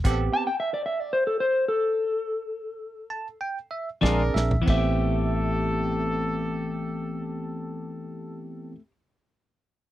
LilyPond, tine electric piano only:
\new Staff \with { instrumentName = "Tine electric piano" } { \time 4/4 \key a \minor \tempo 4 = 91 << { r1 | r4. a''8 g''8 e''8 d''8 e''8 | r1 | r1 | } \\ { <b c' g'>4 r2. | r2. <c' d' aes'>4 | <b c' g'>1~ | <b c' g'>1 | } >> }